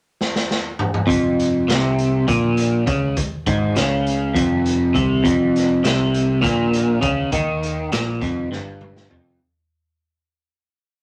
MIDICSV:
0, 0, Header, 1, 4, 480
1, 0, Start_track
1, 0, Key_signature, -4, "minor"
1, 0, Tempo, 593472
1, 876, Time_signature, 7, 3, 24, 8
1, 8920, End_track
2, 0, Start_track
2, 0, Title_t, "Clean electric guitar"
2, 0, Program_c, 0, 27
2, 863, Note_on_c, 0, 41, 105
2, 1345, Note_off_c, 0, 41, 0
2, 1361, Note_on_c, 0, 48, 95
2, 1835, Note_off_c, 0, 48, 0
2, 1846, Note_on_c, 0, 46, 107
2, 2316, Note_off_c, 0, 46, 0
2, 2319, Note_on_c, 0, 49, 85
2, 2555, Note_off_c, 0, 49, 0
2, 2809, Note_on_c, 0, 44, 103
2, 3041, Note_off_c, 0, 44, 0
2, 3046, Note_on_c, 0, 49, 90
2, 3515, Note_on_c, 0, 41, 103
2, 3521, Note_off_c, 0, 49, 0
2, 3996, Note_off_c, 0, 41, 0
2, 3997, Note_on_c, 0, 48, 89
2, 4236, Note_off_c, 0, 48, 0
2, 4236, Note_on_c, 0, 41, 109
2, 4716, Note_off_c, 0, 41, 0
2, 4723, Note_on_c, 0, 48, 98
2, 5190, Note_off_c, 0, 48, 0
2, 5193, Note_on_c, 0, 46, 110
2, 5670, Note_off_c, 0, 46, 0
2, 5673, Note_on_c, 0, 49, 87
2, 5914, Note_off_c, 0, 49, 0
2, 5924, Note_on_c, 0, 51, 114
2, 6398, Note_off_c, 0, 51, 0
2, 6409, Note_on_c, 0, 46, 99
2, 6640, Note_off_c, 0, 46, 0
2, 6648, Note_on_c, 0, 41, 96
2, 6879, Note_off_c, 0, 41, 0
2, 6887, Note_on_c, 0, 43, 98
2, 7357, Note_off_c, 0, 43, 0
2, 7361, Note_on_c, 0, 41, 83
2, 7594, Note_off_c, 0, 41, 0
2, 8920, End_track
3, 0, Start_track
3, 0, Title_t, "Picked electric bass"
3, 0, Program_c, 1, 34
3, 876, Note_on_c, 1, 29, 75
3, 1326, Note_off_c, 1, 29, 0
3, 1368, Note_on_c, 1, 36, 86
3, 1813, Note_off_c, 1, 36, 0
3, 1843, Note_on_c, 1, 34, 82
3, 2292, Note_off_c, 1, 34, 0
3, 2321, Note_on_c, 1, 37, 78
3, 2546, Note_off_c, 1, 37, 0
3, 2802, Note_on_c, 1, 32, 80
3, 3028, Note_off_c, 1, 32, 0
3, 3059, Note_on_c, 1, 37, 90
3, 3502, Note_off_c, 1, 37, 0
3, 3525, Note_on_c, 1, 29, 91
3, 3976, Note_off_c, 1, 29, 0
3, 4005, Note_on_c, 1, 36, 80
3, 4231, Note_off_c, 1, 36, 0
3, 4248, Note_on_c, 1, 29, 91
3, 4697, Note_off_c, 1, 29, 0
3, 4731, Note_on_c, 1, 36, 87
3, 5179, Note_off_c, 1, 36, 0
3, 5213, Note_on_c, 1, 34, 96
3, 5659, Note_off_c, 1, 34, 0
3, 5685, Note_on_c, 1, 37, 90
3, 5910, Note_off_c, 1, 37, 0
3, 5922, Note_on_c, 1, 39, 85
3, 6372, Note_off_c, 1, 39, 0
3, 6406, Note_on_c, 1, 34, 88
3, 6629, Note_off_c, 1, 34, 0
3, 6646, Note_on_c, 1, 29, 85
3, 6868, Note_off_c, 1, 29, 0
3, 6887, Note_on_c, 1, 31, 88
3, 7331, Note_off_c, 1, 31, 0
3, 7364, Note_on_c, 1, 29, 84
3, 7586, Note_off_c, 1, 29, 0
3, 8920, End_track
4, 0, Start_track
4, 0, Title_t, "Drums"
4, 167, Note_on_c, 9, 38, 58
4, 248, Note_off_c, 9, 38, 0
4, 289, Note_on_c, 9, 38, 76
4, 370, Note_off_c, 9, 38, 0
4, 411, Note_on_c, 9, 38, 79
4, 492, Note_off_c, 9, 38, 0
4, 640, Note_on_c, 9, 45, 94
4, 721, Note_off_c, 9, 45, 0
4, 761, Note_on_c, 9, 45, 93
4, 842, Note_off_c, 9, 45, 0
4, 880, Note_on_c, 9, 36, 99
4, 887, Note_on_c, 9, 42, 88
4, 961, Note_off_c, 9, 36, 0
4, 967, Note_off_c, 9, 42, 0
4, 1128, Note_on_c, 9, 42, 66
4, 1208, Note_off_c, 9, 42, 0
4, 1370, Note_on_c, 9, 42, 89
4, 1378, Note_on_c, 9, 38, 104
4, 1451, Note_off_c, 9, 42, 0
4, 1459, Note_off_c, 9, 38, 0
4, 1605, Note_on_c, 9, 42, 65
4, 1686, Note_off_c, 9, 42, 0
4, 1842, Note_on_c, 9, 36, 88
4, 1845, Note_on_c, 9, 42, 82
4, 1923, Note_off_c, 9, 36, 0
4, 1926, Note_off_c, 9, 42, 0
4, 2079, Note_on_c, 9, 42, 73
4, 2160, Note_off_c, 9, 42, 0
4, 2321, Note_on_c, 9, 42, 66
4, 2323, Note_on_c, 9, 36, 93
4, 2402, Note_off_c, 9, 42, 0
4, 2404, Note_off_c, 9, 36, 0
4, 2560, Note_on_c, 9, 42, 87
4, 2564, Note_on_c, 9, 36, 95
4, 2641, Note_off_c, 9, 42, 0
4, 2645, Note_off_c, 9, 36, 0
4, 2802, Note_on_c, 9, 42, 65
4, 2803, Note_on_c, 9, 36, 96
4, 2883, Note_off_c, 9, 42, 0
4, 2884, Note_off_c, 9, 36, 0
4, 3039, Note_on_c, 9, 42, 83
4, 3047, Note_on_c, 9, 38, 93
4, 3120, Note_off_c, 9, 42, 0
4, 3128, Note_off_c, 9, 38, 0
4, 3289, Note_on_c, 9, 42, 68
4, 3370, Note_off_c, 9, 42, 0
4, 3526, Note_on_c, 9, 42, 80
4, 3527, Note_on_c, 9, 36, 95
4, 3607, Note_off_c, 9, 42, 0
4, 3608, Note_off_c, 9, 36, 0
4, 3766, Note_on_c, 9, 42, 72
4, 3847, Note_off_c, 9, 42, 0
4, 4006, Note_on_c, 9, 36, 97
4, 4008, Note_on_c, 9, 42, 64
4, 4087, Note_off_c, 9, 36, 0
4, 4089, Note_off_c, 9, 42, 0
4, 4247, Note_on_c, 9, 36, 98
4, 4248, Note_on_c, 9, 42, 90
4, 4328, Note_off_c, 9, 36, 0
4, 4329, Note_off_c, 9, 42, 0
4, 4495, Note_on_c, 9, 42, 60
4, 4503, Note_on_c, 9, 38, 28
4, 4576, Note_off_c, 9, 42, 0
4, 4584, Note_off_c, 9, 38, 0
4, 4727, Note_on_c, 9, 42, 87
4, 4735, Note_on_c, 9, 38, 107
4, 4807, Note_off_c, 9, 42, 0
4, 4816, Note_off_c, 9, 38, 0
4, 4968, Note_on_c, 9, 42, 71
4, 5049, Note_off_c, 9, 42, 0
4, 5207, Note_on_c, 9, 36, 93
4, 5210, Note_on_c, 9, 42, 80
4, 5218, Note_on_c, 9, 38, 31
4, 5287, Note_off_c, 9, 36, 0
4, 5290, Note_off_c, 9, 42, 0
4, 5299, Note_off_c, 9, 38, 0
4, 5445, Note_on_c, 9, 42, 71
4, 5526, Note_off_c, 9, 42, 0
4, 5679, Note_on_c, 9, 42, 76
4, 5683, Note_on_c, 9, 36, 108
4, 5760, Note_off_c, 9, 42, 0
4, 5764, Note_off_c, 9, 36, 0
4, 5921, Note_on_c, 9, 42, 96
4, 5925, Note_on_c, 9, 36, 95
4, 6002, Note_off_c, 9, 42, 0
4, 6006, Note_off_c, 9, 36, 0
4, 6170, Note_on_c, 9, 42, 60
4, 6251, Note_off_c, 9, 42, 0
4, 6405, Note_on_c, 9, 42, 89
4, 6413, Note_on_c, 9, 38, 109
4, 6486, Note_off_c, 9, 42, 0
4, 6494, Note_off_c, 9, 38, 0
4, 6644, Note_on_c, 9, 36, 106
4, 6648, Note_on_c, 9, 42, 72
4, 6657, Note_on_c, 9, 38, 32
4, 6725, Note_off_c, 9, 36, 0
4, 6729, Note_off_c, 9, 42, 0
4, 6737, Note_off_c, 9, 38, 0
4, 6893, Note_on_c, 9, 38, 54
4, 6974, Note_off_c, 9, 38, 0
4, 7125, Note_on_c, 9, 47, 79
4, 7206, Note_off_c, 9, 47, 0
4, 7251, Note_on_c, 9, 38, 72
4, 7332, Note_off_c, 9, 38, 0
4, 7366, Note_on_c, 9, 43, 92
4, 7447, Note_off_c, 9, 43, 0
4, 8920, End_track
0, 0, End_of_file